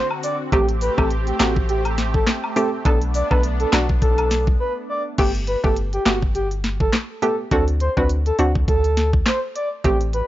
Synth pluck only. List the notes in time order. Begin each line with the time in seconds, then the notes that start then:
0.52 A3 C4 G4
0.98 A3 C4 G4
1.40 A3 C4 G4
2.56 A3 C4 G4
2.85 B3 D4 A4
3.31 B3 D4 A4
3.73 B3 D4 A4
5.18 A3 B3 G4
5.64 A3 B3 G4
6.06 A3 B3 G4
7.22 A3 B3 G4
7.51 C4 D4 F#4
7.97 C4 D4 F#4
8.39 C4 D4 F#4
9.84 A3 C4 G4